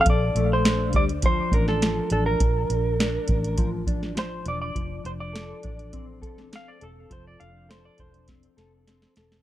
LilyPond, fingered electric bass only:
\new Staff \with { instrumentName = "Fingered electric bass" } { \clef bass \time 4/4 \key f \major \tempo 4 = 102 bes,,8 bes,,4 d,4 a,,4 a,,8 | bes,,8 bes,,4 a,,2 e,,8 | f,,8 f,,4 a,,4 e,,4 e,,8 | f,,8 f,,4 e,,4 f,,4 e,,8 | }